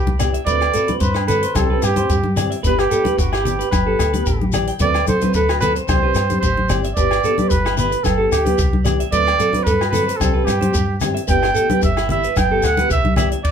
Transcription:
Already playing: C2 G4
0.07 high conga
0.19 E3 B3 D4 G4 D5, cross-stick, closed hi-hat, low conga, low agogo, shekere
0.34 E5, closed hi-hat
0.46 D2 A3 C4 F#4 B4 D5, kick, closed hi-hat, shekere
0.61 cross-stick, low agogo
0.73 A3 C4 F#4 A4, closed hi-hat, shekere
0.88 C4 F#4 B4, closed hi-hat, high conga
1.00 G2 B4 C5, kick, closed hi-hat, shekere
1.14 D4, cross-stick, low agogo
1.28 A3 C4 F#4 A4 B4, closed hi-hat, low conga, shekere
1.43 C5, closed hi-hat, shekere
1.55 C2 E3 C4 D4 G4 A4, kick, cross-stick, closed hi-hat, high conga, low agogo, shekere
1.69 C4 D4 G4 B4
1.82 G2 G4, cross-stick, closed hi-hat, low agogo, shekere
1.96 C4 D4 G4 C5, closed hi-hat, high conga
2.09 G2 G4, kick, closed hi-hat, shekere
2.24 high conga
2.36 E3 C4 D4 G4 D5, cross-stick, closed hi-hat, low conga, low agogo, shekere
2.51 E5, closed hi-hat
2.63 G1 E3 B3 D4 G4 B4, kick, closed hi-hat, shekere
2.78 G4, cross-stick, low agogo
2.91 E3 B3 D4 G4 A4, closed hi-hat, shekere
3.04 D4 G4 B4, muted nylon-string guitar stroke, closed hi-hat, high conga
3.18 G1 F#4 G4, kick, closed hi-hat, shekere
3.32 E4 G4, cross-stick, low agogo
3.44 E3 B3 D4 G4, closed hi-hat, low conga, shekere
3.59 B4, closed hi-hat, shekere
3.71 G1 B4, kick, cross-stick, closed hi-hat, high conga, low agogo, shekere
3.86 B3 D4 G4 A4
3.99 D2, cross-stick, closed hi-hat, low agogo, shekere
4.13 B3 D4 G4 B4, closed hi-hat, high conga
4.26 A1 G4, kick, closed hi-hat, shekere
4.42 high conga
4.52 E3 D4 G4 D5, cross-stick, closed hi-hat, low conga, low agogo, shekere
4.67 G5, closed hi-hat
4.79 D2 F#3 A3 C4 F#4 B4 D5, kick, closed hi-hat, low conga, shekere
4.94 cross-stick, low agogo
5.05 F#3 A3 C4 F#4 A4 C5, closed hi-hat, high conga, low conga, shekere
5.20 A3 C4 F#4 B4, closed hi-hat, high conga, shekere
5.34 D2 A4 B4, kick, closed hi-hat, shekere
5.49 F#4, cross-stick, low agogo
5.60 F#3 A3 C4 F#4 A4 B4, closed hi-hat, low conga, shekere
5.76 C5, closed hi-hat, shekere
5.88 C2 E3 C4 D4 G4 C5, kick, cross-stick, closed hi-hat, high conga, low agogo, shekere
6.02 C4 D4 G4 B4
6.14 G2, cross-stick, closed hi-hat, low agogo, shekere
6.29 C4 D4 G4 C5, closed hi-hat, high conga, shekere
6.41 A1 G4 C5, kick, closed hi-hat, shekere
6.57 high conga
6.69 G1 E3 C4 D4 G4 D5, cross-stick, closed hi-hat, low conga, low agogo, shekere
6.84 E5, closed hi-hat, shekere
6.95 G1 E3 B3 G4 B4 D5, muted nylon-string guitar stroke, kick, closed hi-hat, shekere
7.11 cross-stick, low agogo
7.24 E3 B3 D4 G4 A4, closed hi-hat, shekere
7.38 B3 D4 G4 B4, closed hi-hat, high conga
7.49 G1 G4 B4, kick, closed hi-hat, shekere
7.65 E4, cross-stick, low agogo
7.77 E3 B3 D4 E4 G4 B4, closed hi-hat, low conga, shekere
7.91 B4, closed hi-hat, shekere
8.03 G1 A4, kick, cross-stick, closed hi-hat, high conga, low agogo, shekere
8.18 B3 D4 G4 A4
8.32 D2 G4, cross-stick, closed hi-hat, low agogo, shekere
8.45 B3 D4 G4 B4, closed hi-hat, high conga
8.58 C2 G4, kick, closed hi-hat, shekere
8.73 high conga
8.84 E3 B3 D4 G4 D5, cross-stick, closed hi-hat, low conga, low agogo, shekere
9.00 E5, closed hi-hat
9.12 D2 F#3 A3 C4 F#4 B4 D5, kick, closed hi-hat, shekere
9.27 cross-stick, low agogo
9.38 F#3 A3 C4 F#4 A4, closed hi-hat, shekere
9.52 A3 C4 F#4 B4, closed hi-hat, high conga
9.63 G2 A4 B4, kick, closed hi-hat, shekere
9.81 F#4, cross-stick, low agogo
9.90 F#3 A3 C4 A4 B4, low conga, shekere
9.94 F#4, closed hi-hat
10.06 C5, closed hi-hat, shekere
10.16 E3 C4 D4 A4, high conga
10.21 C2 G4, kick, cross-stick, closed hi-hat, low agogo, shekere
10.34 C4 D4 G4 B4
10.45 G2 G4, cross-stick, closed hi-hat, low agogo, shekere
10.61 C4 D4 G4 C5, closed hi-hat, high conga
10.73 G2 G4, kick, closed hi-hat, shekere
11.00 E3 C4 D4 G4, cross-stick, closed hi-hat, low conga, low agogo, shekere
11.14 E5, closed hi-hat
11.28 G1 E3 B3 D4 G4 B4 G5, kick, closed hi-hat, shekere
11.43 cross-stick, low agogo
11.54 E3 B3 D4 G4 A4, closed hi-hat, shekere
11.70 B3 D4 G4 B4, closed hi-hat, high conga
11.82 G1 G4 E5, kick, closed hi-hat, shekere
11.97 E4, cross-stick, low agogo
12.09 E3 B3 D4 E4 G4 E5, closed hi-hat, low conga
12.23 B4, closed hi-hat, shekere
12.36 G1 G5, kick, cross-stick, closed hi-hat, high conga, low agogo, shekere
12.51 B3 D4 G4 A4
12.63 D2 F#5, cross-stick, closed hi-hat, low agogo, shekere
12.77 B3 D4 G4 B4, closed hi-hat, high conga
12.90 C2 G4 E5, kick, closed hi-hat, shekere
13.05 high conga
13.16 E3 B3 D4 G4 D5 E5, cross-stick, closed hi-hat, low conga, low agogo, shekere
13.32 E5, closed hi-hat
13.44 D5, kick, crash

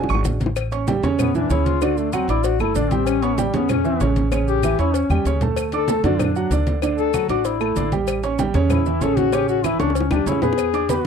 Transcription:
Already playing: G#3 C#4 D4 F#4
0.04 low bongo
0.09 G#1 C#6, high conga, claves, maracas
0.14 low bongo
0.24 A1, cowbell, low bongo, high conga, maracas
0.40 cowbell, high conga, maracas
0.46 low bongo
0.56 cowbell, high conga, claves, maracas
0.72 C#4 C#5 C#6, cowbell, high conga, maracas
0.87 G3 G4 G5, cowbell, high conga, maracas
1.03 E2 C#3 C#4 C#5, cowbell, high conga, maracas
1.19 B3, cowbell, high conga, low conga, claves, maracas
1.35 E3 D4 E4 E5, high conga, low conga, maracas
1.50 D2 C#3 C#4 E4 C#5, cowbell, high conga, maracas
1.66 F4, cowbell, high conga, maracas
1.82 D3 D4 F#4 D5, cowbell, high conga, claves, maracas
1.97 A3, high conga, maracas
2.13 F#3 C4 F#4 F#5, cowbell, high conga, claves, maracas
2.28 A1 D4 E4 D5 D6, cowbell, high conga, maracas
2.44 F#4, cowbell, high conga, maracas
2.60 G1 A3 E4 A4 A5, high conga, claves, maracas
2.75 A1 D3 D4 D5, cowbell, high conga, maracas
2.91 G3 C4 G4 G5, cowbell, high conga, maracas
3.07 C#4, cowbell, claves, maracas
3.22 B3 C#4 C#5 C#6, cowbell, high conga, maracas
3.38 G3 G4 G5, cowbell, high conga, maracas
3.53 E2 C#3 B3 C#4 C#5, cowbell, high conga, maracas
3.69 C#4, cowbell, high conga, low conga, claves, maracas
3.84 E3 E4 E5, high conga, maracas
4.00 A1 C#3 C#4 C#5, cowbell, high conga, maracas
4.16 cowbell, high conga, maracas
4.32 C#3 C#4 C#5, cowbell, high conga, claves, maracas
4.47 G4, high conga, maracas
4.63 E3 E4 E5, cowbell, high conga, claves, maracas
4.78 E2 C#4 E4 C#5 C#6, cowbell, high conga, maracas
4.94 C#4, cowbell, high conga, maracas
5.09 E2 G3 G4 G5, high conga, claves, maracas
5.25 D2 C#3 C#4 C#5, cowbell, maracas
5.41 A3 A4 A5, cowbell, low conga, maracas
5.56 cowbell, high conga, claves, maracas
5.72 D4 A4 D5 D6, cowbell, high conga, maracas
5.88 A3 A4 A5, cowbell, high conga, maracas
6.03 F#2 D3 D4 F#4 D5, cowbell, high conga, maracas
6.19 D4, cowbell, high conga, low conga, claves, maracas
6.35 F#3 F#4 F#5, high conga, maracas
6.51 D2 D3 D4 D5, cowbell, high conga, maracas
6.67 cowbell, high conga, maracas
6.82 D3 D4 D5, cowbell, high conga, claves, maracas
6.98 A4, high conga, maracas
7.14 F#3 F#4 F#5, cowbell, high conga, claves, maracas
7.29 A1 D4 F#4 D5 D6, cowbell, high conga, maracas
7.45 E4, cowbell, high conga, maracas
7.60 A3 A4 A5, high conga, claves, maracas
7.76 A1 D3 D4 D5, cowbell, high conga, maracas
7.92 G3 G4 G5, cowbell, high conga, maracas
8.07 cowbell, high conga, claves, maracas
8.23 C#4 C#5 C#6, cowbell, high conga, maracas
8.39 G3 G4 G5, cowbell, high conga, maracas
8.54 E2 C#3 C#4 C#5, cowbell, high conga, maracas
8.70 E4, cowbell, high conga, low conga, claves, maracas
8.86 E3 E4 E5, high conga, maracas
9.01 A1 C#3 C#4 A4 C#5, cowbell, high conga, maracas
9.17 F#4, cowbell, high conga, maracas
9.32 C#3 C#4 G4 C#5, cowbell, high conga, claves, maracas
9.49 F#4, high conga, maracas
9.64 E3 E4 E5, cowbell, high conga, claves, maracas
9.79 C#2 C#4 D4 C#5 C#6, cowbell, high bongo, high conga, maracas
9.90 high bongo
9.95 C#4, cowbell, high conga, maracas
10.00 low bongo
10.11 D2 G3 D4 G4 G5, low bongo, high conga, claves, maracas
10.26 E2 C#3 C#4 E4 C#5, cowbell, maracas
10.32 low bongo
10.42 B3 G#4 B4 B5, cowbell, low bongo, low conga, maracas
10.53 low bongo
10.58 cowbell, high conga, claves, maracas
10.73 D4 D5 D6, cowbell, high conga, maracas
10.89 B3 B4 B5, cowbell, high conga, maracas

